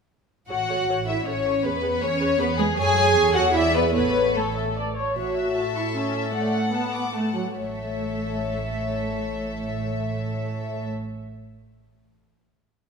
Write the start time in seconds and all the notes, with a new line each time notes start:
0.49 A1 F#4 A4 C#5 F#5
0.69 A4 C#5
0.88 A1 A4 C#5
1.08 E4 A4 C#5 E5
1.26 A1 C#4 A4 C#5
1.46 A4 C#5
1.64 E2 B3 G#4 B4
1.83 G#4 B4
2.02 E2 C#4 G#4 B4 C#5
2.20 G#4 B4
2.39 E2 B3 G#4 B4
2.58 G#3 G#4 B4
2.76 F#2 G#4 A4 C#5 G#5
3.15 E2 A4 C#5
3.35 F#4 F#5
3.54 E4 G#4 D5 E5
3.74 B3 B4
3.93 A1 B3 A4 B4 C#5
4.35 A3 A4 C#5
4.55 E5
4.77 D5
4.97 C#5
5.17 A1 A2 F#4 A4 C#5 E5
5.37 E5
5.56 A5
5.76 E4 C#6
5.96 C#4 A5
6.15 E5
6.35 A3 D5 F#5
6.54 F#5
6.74 B3 A5
6.94 D6
7.14 A3 A5
7.35 F#3 F#5
7.57 A1 A2 A3 A4 C#5 E5